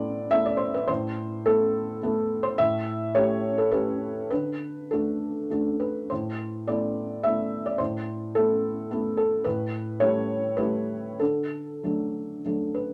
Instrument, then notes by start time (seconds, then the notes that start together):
felt piano
Already playing: A2 A3 B3 E4 C5 D5
0.31 A3 B3 E4 E5
0.46 D5
0.57 C5
0.74 B4
0.88 A2 C5
1.46 A3 B3 E4 A4
2.03 A3 B3 E4
2.43 C5
2.58 A2 E5
3.15 A3 C#4 G4 C#5
3.58 A4
3.71 A3 C#4 G4 B4
4.30 D3 B4
4.91 A3 D4 F#4 A4
5.50 A3 D4 F#4
5.80 B4
6.10 A2 C5
6.67 A3 B3 E4 D5
7.23 A3 B3 E4 E5
7.66 D5
7.78 A2 C5
8.35 A3 B3 E4 A4
8.91 A3 B3 E4
9.17 A4
9.44 A2 B4
10.00 G3 A3 E4 C#5
10.57 G3 A3 E4 B4
11.19 D3 A4
11.83 F#3 A3 D4
12.45 F#3 A3 D4
12.75 B4